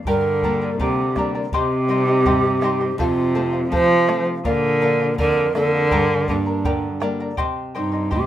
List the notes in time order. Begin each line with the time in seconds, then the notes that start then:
0.05 G2 D3 G4 A#4 D5 G5 A#5, bombo low
0.42 G3 A#3 D4 A#4 D5 G5 A#5, bombo low
0.61 A#4 D5 A#5
0.78 C3 D3 G4 A#4 D5 G5 A#5, bombo low
1.16 G3 A#3 D4 A#4 D5 G5 A#5, bombo rim, bombo low
1.35 A#4 D5 A#5
1.52 C3 G4 C5 D#5 G5 C6, bombo low
1.88 G3 C4 D#4 C5 D#5 G5 C6
2.07 C5 D#5 C6
2.26 G2 G4 C5 D#5 G5 C6, bombo low
2.61 G3 C4 D#4 C5 D#5 G5 C6, bombo rim
2.81 C5 D#5 C6
2.98 F2 C3 F4 A4 C5 F5, bombo low
3.35 F3 A3 C4 A4 C5 F5
3.53 C5 F5
3.71 C3 F3 A4 C5 F5, bombo low
4.07 F3 A3 C4 A4 C5 F5, bombo rim
4.26 C5 F5
4.45 A#2 D3 A#4 D5 F5, bombo low
4.81 F3 A#3 D4 A#4 D5 F5
5.00 D5 F5
5.18 F2 D3 A#4 D5 F5, bombo low
5.55 D3 F3 A#3 D4 A4 A#4 D5 F5, bombo rim
5.69 A#4
5.74 D5 F5
5.91 G2 G4 A#4 D5 G5 A#5, bombo low
6.28 G2 G3 A#3 D4 A#4 D5 G5 A#5, bombo low
6.46 A#4 D5 A#5
6.65 D3 G4 A#4 D5 G5 A#5, bombo low
7.00 G3 A#3 D4 A#4 D5 G5 A#5, bombo rim
7.20 A#4 D5 A#5
7.37 C3 G4 C5 D#5 G5 C6, bombo low
7.75 G2 G3 D#4 C5 D#5 G5 C6
7.92 C5 D#5 C6
8.11 C3 G4 C5 D#5 G5 C6, bombo low